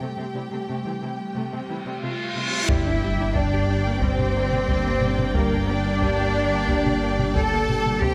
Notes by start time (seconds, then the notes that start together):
Already playing: G3 A3 C4 G4 G5
0.00 C3 A3, reverse cymbal
0.17 C3 A3 C4
0.34 C3 G3 A3 E4
0.51 C3 A3 C4
0.68 C3 A3
0.85 C3 E3 A3 C4
1.02 C3 E3 A3 E4
1.35 C3 A3
1.52 C3 A3 C4
1.69 C3 E3 A3 E4
1.85 C3 G3 A3 C4
2.02 C3 A3 F4 F5
2.35 C3 A3 E4
2.67 G1 G2 G3 A#3 D4 E4 G4 D5 E5 G5, taiko, impact
2.87 D4
3.04 G4
3.20 D4
3.35 G3 D4 D5, taiko
3.54 G4
3.70 D4
3.87 A#3
4.02 G3 C4 C5, taiko
4.19 G4, taiko low-mid
4.37 A#3
4.52 G4, taiko low-mid
4.69 G3, taiko
4.86 A#3
5.02 taiko low-mid
5.19 taiko low-mid
5.35 G3 A#3 A#4, taiko
5.54 D4
5.69 D4 G4 D5
5.87 D4
6.02 G3, taiko
6.20 G4
6.37 D4
6.53 A#3
6.69 G3, taiko
6.86 G4, taiko low-mid
7.03 A#3
7.19 G4, taiko low-mid
7.36 G3 A4 A5, taiko
7.53 A#3
7.69 taiko low-mid
7.86 taiko low-mid
8.02 C2 C3 A3 G4 A4 C5 G5, taiko